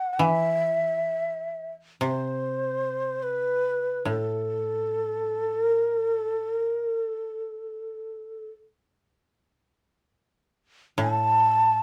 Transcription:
Already playing: F#5
0.13 F#5
0.19 E3 E5
2.01 C3
2.05 C5
3.23 B4
4.05 A2 A4
5.64 A#4
6.07 A4
6.53 A#4
6.95 A4
10.98 A2 A5

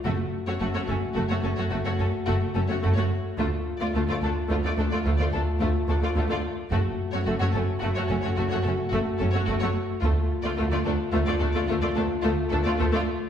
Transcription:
0.04 F#1 F#2 A3 F#4
0.47 F#2 A3 F#4 C#5
0.60 F#1 F#2 A3 F#4
0.74 F#2 A3 F#4 C#5
0.87 F#1 F#2 A3 C#4 A4
1.15 F#1 F#2 A3 F#4
1.29 F#2 A3 F#4 C#5
1.43 F#1 F#2 A3 C#4 A4
1.56 F#2 A3 F#4 C#5
1.70 F#1 F#2 A3 F#4
1.85 F#2 A3 F#4 C#5
1.99 F#1 F#2 A3 C#4 A4
2.26 F#1 F#2 A3 F#4
2.55 F#1 F#2 A3 C#4 A4
2.68 F#2 A3 F#4 C#5
2.82 F#1 F#2 A3 F#4
2.96 F#2 A3 F#4 C#5
3.38 D2 A3 F4
3.80 D2 A3 F4 D5
3.95 D2 A3 F4
4.08 D2 A3 F4 D5
4.22 D2 A3 D4 A4
4.49 D2 A3 F4
4.64 D2 A3 F4 D5
4.78 D2 A3 D4 A4
4.91 D2 A3 F4 D5
5.04 D2 A3 F4
5.18 D2 A3 F4 D5
5.32 D2 A3 D4 A4
5.60 D2 A3 F4
5.88 D2 A3 D4 A4
6.01 D2 A3 F4 D5
6.15 D2 A3 F4
6.29 D2 A3 F4 D5
6.71 F#1 F#2 A3 F#4
7.12 F#2 A3 F#4 C#5
7.25 F#1 F#2 A3 F#4
7.39 F#2 A3 F#4 C#5
7.52 F#1 F#2 A3 C#4 A4
7.79 F#1 F#2 A3 F#4
7.94 F#2 A3 F#4 C#5
8.07 F#1 F#2 A3 C#4 A4
8.21 F#2 A3 F#4 C#5
8.35 F#1 F#2 A3 F#4
8.50 F#2 A3 F#4 C#5
8.63 F#1 F#2 A3 A4
8.67 C#4
8.90 F#1 F#2 A3 F#4
9.18 F#1 F#2 A3 C#4 A4
9.31 F#2 A3 F#4 C#5
9.45 F#1 F#2 A3 F#4
9.50 A3
9.59 F#2 A3 F#4 C#5
10.01 D2 A3 F4
10.43 D2 A3 F4 D5
10.57 D2 A3 F4
10.71 D2 A3 F4 D5
10.85 D2 A3 D4 A4
11.12 D2 A3 F4
11.26 D2 A3 F4 D5
11.40 D2 A3 D4 A4
11.54 D2 A3 F4 D5
11.67 D2 A3 F4
11.81 D2 A3 F4 D5
11.95 D2 A3 D4 A4
12.21 D2 A3 F4
12.49 D2 A3 D4 A4
12.64 D2 A3 F4 D5
12.78 D2 A3 F4
12.93 D2 A3 F4 D5

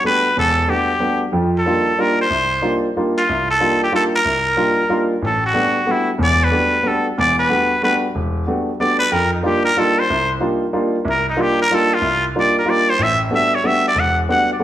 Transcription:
0.04 G3 A3 B3 D4 F#4 B4
0.37 E1 E2 A4
0.68 G3 A3 B3 D4 F#4 G4
1.00 G3 A3 B3 D4 F#4
1.32 F2 F3
1.58 A4
1.66 G3 A#3 D4 D#4 F4
1.98 G3 A#3 D4 D#4 F4 A#4
2.21 C5
2.30 C2
2.62 G3 A#3 D4 D#4 F4
2.97 G3 A#3 D4 D#4 F4
3.18 F4
3.29 C2
3.50 A4
3.60 G3 A#3 D4 D#4 F4
3.83 G4
3.92 G3 A#3 D4 D#4 F4 A4
4.15 A#4
4.25 C2
4.56 G3 A#3 D4 D#4 F4
4.89 G3 A#3 D4 D#4 F4
5.22 A1 A4
5.46 F#4
5.54 G3 A3 B3 D4 F#4
5.86 G3 A3 B3 D4 F#4
5.91 E4
6.18 E1 E2
6.23 D5
6.44 B4
6.51 G3 A3 B3 D4 F#4
6.83 G3 A3 B3 D4 F#4
6.87 A4
7.18 E1 E2 D5
7.39 B4
7.49 G3 A3 B3 D4 F#4
7.82 G3 A3 B3 D4 F#4 B4
8.15 E1
8.47 G3 A3 B3 D4 F#4
8.80 G3 A3 B3 D4 F#4 D5
8.99 B4
9.12 F2 A#4
9.33 D#4
9.43 G3 A#3 D4 D#4 F4 G4
9.65 A#4
9.77 G3 A#3 D4 D#4 F4 A4
9.99 C5
10.10 C2
10.40 G3 A#3 D4 D#4 F4
10.73 G3 A#3 D4 D#4 F4
11.05 C2
11.10 A#4
11.29 D#4
11.36 G3 A#3 D4 D#4 F4
11.42 G4
11.62 A#4
11.70 G3 A#3 D4 D#4 F4
11.75 A4
11.94 F4
12.01 C2
12.35 G3 A#3 D4 D#4 F4
12.40 D5
12.59 A#4
12.65 G3 A#3 D4 D#4 F4
12.70 D5
12.90 C5
12.99 A1 E5
13.31 G3 A3 B3 D4 F#4
13.35 E5
13.55 C#5
13.64 G3 A3 B3 D4 F#4 E5
13.88 D5
13.95 E1
13.99 F#5
14.29 G3 A3 B3 D4 F#4 F#5
14.53 D5
14.59 G3 A3 B3 D4 F#4

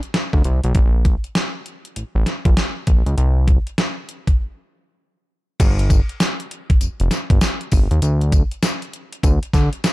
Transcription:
0.03 closed hi-hat
0.14 snare, closed hi-hat
0.33 D2, kick
0.44 C2, closed hi-hat
0.64 B1, closed hi-hat
0.75 A#1, kick, closed hi-hat
1.05 kick, closed hi-hat
1.24 closed hi-hat
1.35 snare, closed hi-hat
1.66 closed hi-hat
1.85 closed hi-hat
1.96 A1, closed hi-hat
2.15 A1
2.26 snare, closed hi-hat
2.45 A#1, kick, closed hi-hat
2.57 snare, closed hi-hat
2.87 A#1, kick, closed hi-hat
3.06 C#2, closed hi-hat
3.18 C2, closed hi-hat
3.48 kick, closed hi-hat
3.67 closed hi-hat
3.78 snare, closed hi-hat
4.09 closed hi-hat
4.27 kick, closed hi-hat
5.60 G1, kick, closed hi-hat, crash, tambourine
5.79 closed hi-hat
5.90 kick, closed hi-hat, tambourine
6.09 closed hi-hat
6.20 snare, closed hi-hat, tambourine
6.40 closed hi-hat
6.51 closed hi-hat
6.70 kick, closed hi-hat
6.81 F1, closed hi-hat, tambourine
7.00 F1, closed hi-hat
7.11 snare, closed hi-hat, tambourine
7.30 G1, kick, closed hi-hat
7.41 snare, closed hi-hat, tambourine
7.61 closed hi-hat
7.72 G1, kick, open hi-hat, tambourine
7.91 D#2, closed hi-hat
8.02 D2, closed hi-hat, tambourine
8.21 closed hi-hat
8.32 kick, closed hi-hat, tambourine
8.51 closed hi-hat
8.62 snare, closed hi-hat, tambourine
8.82 closed hi-hat
8.93 closed hi-hat
9.13 closed hi-hat
9.23 D2, kick, closed hi-hat, tambourine
9.43 closed hi-hat
9.53 D3, kick, snare, closed hi-hat, tambourine
9.73 closed hi-hat
9.84 snare, closed hi-hat, tambourine

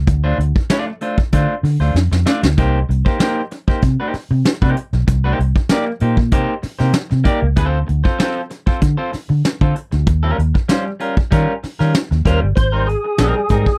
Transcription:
0.07 D2, muted clean electric guitar stroke, kick, closed hi-hat
0.24 A3 D4 F4 C5
0.38 D2, muted clean electric guitar stroke, closed hi-hat
0.56 muted clean electric guitar stroke, kick
0.69 A3 D4 F4 D5, snare, closed hi-hat
0.87 muted clean electric guitar stroke
1.01 A3 D4 F4 C5, closed hi-hat
1.18 kick
1.32 D3 A3 D4 F4 C5, kick, closed hi-hat
1.63 D3, muted clean electric guitar stroke, snare, open hi-hat
1.80 D2 A3 D4 F4 C5, snare
1.94 F2, snare
2.12 F2, muted clean electric guitar stroke, snare
2.26 A3 D4 F4 D5, snare
2.43 D2, muted clean electric guitar stroke, snare
2.58 C2 A#3 D#4 G4 C5, kick, closed hi-hat
2.89 C2, muted clean electric guitar stroke, closed hi-hat
3.05 A#3 D#4 G4 C5, kick
3.19 A#3 D#4 G4 C5, snare, closed hi-hat
3.51 muted clean electric guitar stroke, snare, closed hi-hat
3.68 A#3 D#4 G4 C5, kick
3.82 C3, muted clean electric guitar stroke, kick, closed hi-hat
4.00 A#3 D#4 G4 C5
4.14 muted fingered electric bass stroke, muted clean electric guitar stroke, snare, open hi-hat
4.31 C3, muted clean electric guitar stroke
4.45 muted clean electric guitar stroke, snare, closed hi-hat
4.62 C3 A#3 D#4 G4 C5, kick
4.76 muted clean electric guitar stroke, closed hi-hat
4.93 B1, muted clean electric guitar stroke, snare
5.07 C2, muted clean electric guitar stroke, kick, closed hi-hat
5.24 A#3 D#4 G4 C5
5.39 C2, muted clean electric guitar stroke, closed hi-hat
5.56 muted clean electric guitar stroke, kick
5.69 A#3 D#4 G4 D5, snare, closed hi-hat
5.87 muted clean electric guitar stroke
6.00 A#2 A#3 D#4 G4 C5, closed hi-hat
6.17 muted clean electric guitar stroke, kick
6.31 C3 A#3 D#4 G4 C5, kick, closed hi-hat
6.62 muted clean electric guitar stroke, muted fingered electric bass stroke, snare, open hi-hat
6.79 C3 A#3 D#4 G4 C5, snare
6.93 snare, closed hi-hat
7.10 C3, muted clean electric guitar stroke, snare
7.24 A#3 D#4 G4 D5, kick, snare, closed hi-hat
7.41 C#2, muted clean electric guitar stroke
7.56 D2 C4 F4 A4 C5, kick, closed hi-hat
7.87 D2, muted clean electric guitar stroke, closed hi-hat
8.04 C4 F4 A4 C5, kick
8.19 C4 F4 A4 C5, snare, closed hi-hat
8.50 muted clean electric guitar stroke, snare, closed hi-hat
8.66 C4 F4 A4 C5, kick
8.81 D3, muted clean electric guitar stroke, kick, closed hi-hat
8.97 C4 F4 A4 C5
9.12 muted clean electric guitar stroke, muted fingered electric bass stroke, snare, open hi-hat
9.29 D3, muted clean electric guitar stroke
9.44 muted clean electric guitar stroke, snare, closed hi-hat
9.61 D3 C4 F4 A4 C5, kick
9.75 muted clean electric guitar stroke, closed hi-hat
9.92 D2, muted clean electric guitar stroke, snare
10.06 D#2, muted clean electric guitar stroke, kick, closed hi-hat
10.23 G3 C#4 F4 A#4
10.38 D#2, muted clean electric guitar stroke, closed hi-hat
10.54 muted clean electric guitar stroke, kick
10.68 G3 C#4 F4 C5, snare, closed hi-hat
10.85 muted clean electric guitar stroke
11.00 G3 C#4 F4 A#4, closed hi-hat
11.17 muted clean electric guitar stroke, kick
11.31 D#3 G3 C#4 F4 A#4, kick, closed hi-hat
11.63 muted clean electric guitar stroke, muted fingered electric bass stroke, snare, open hi-hat
11.79 D#3 G3 C#4 F4 A#4, snare
11.94 muted clean electric guitar stroke, snare, closed hi-hat
12.11 D#2, muted clean electric guitar stroke, snare
12.25 D#2 G3 C#4 F4 A#4 C5, kick, snare, closed hi-hat
12.42 G1, muted clean electric guitar stroke
12.56 G#1 C5, muted clean electric guitar stroke, kick, closed hi-hat
12.72 G3 C4 D#4 A#4
12.87 G#4, muted clean electric guitar stroke, closed hi-hat
13.04 muted clean electric guitar stroke
13.18 A#1 G3 C4 D#4 A#4, snare, closed hi-hat
13.36 muted clean electric guitar stroke
13.49 G#2 G3 C4 D#4 A#4, kick, snare, closed hi-hat
13.66 muted clean electric guitar stroke, kick

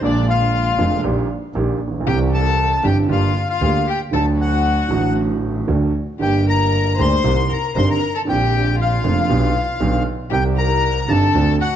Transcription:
0.01 A#1 A#2 D3 G#3 A#3 D4 D5
0.05 F4
0.28 F4 F5
0.77 F1 F2 D3 G#3 A#3 F4
1.04 A#1 A#2 D#3 G3 A#3 G4
1.54 A#1 A#2 D#3 G3 A#3 G4
1.80 A#1
1.88 A1
1.94 A#1
2.00 B1
2.05 C2 C3 E3 G3 C4 G4 G5
2.32 A4 A5
2.83 G1 G2 E3 G3 C4 G4 G5
3.09 G1 G2 D3 G3 A#3 F4 G4 F5
3.49 F4 F5
3.61 D2 D3 G3 A#3 G4
3.87 G4 G5
4.12 D2 D3 F#3 A3 F#4 A4 A5
4.39 F#4 F#5
4.89 A1 A2 D3 F#3 A3
4.93 F#4
5.67 D2 D3 F#3 A3 F#4
6.19 G1 G2 D3 G3 A#3 G4 G5
6.46 A#4 A#5
6.97 D2 D3 G3 A#3 G4 C5 C6
7.24 C2 C3 D#3 G3 C4 G4
7.49 A#4 A#5
7.75 G1 G2 D#3 G3 C4 G4 C5 C6
7.88 A#4 A#5
8.15 A4 A5
8.25 A#1 A#2 D3 A#3 C4 F4 G4
8.29 G5
8.79 F4 F5
9.04 F1 F2 D3 A#3 C4 F4
9.29 B1 B2 D3 G3 B3 G4
9.80 B1 B2 D3 G3 B3 G4
10.30 C2 C3 D#3 G3 C4 G4 G5
10.57 A#4 A#5
11.08 G1 G2 D#3 G3 C4 G4 A4 A5
11.34 D2 D3 A3 C4 F#4
11.60 F#4 F#5

